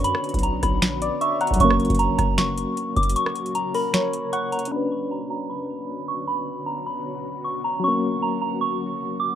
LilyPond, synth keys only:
\new Staff \with { instrumentName = "Synth keys" } { \time 4/4 \key b \minor \tempo 4 = 154 << { r2 r8 d''8 e''8 fis''8 | r1 | r4. ais'8 cis''4 fis''4 | r1 |
r1 | r1 | } \\ { <cis' d' b'>1 | <fis ais cis'>1~ | <fis ais cis'>1 | <cis' d' b'>1~ |
<cis' d' b'>1 | <fis ais cis'>1 | } >> }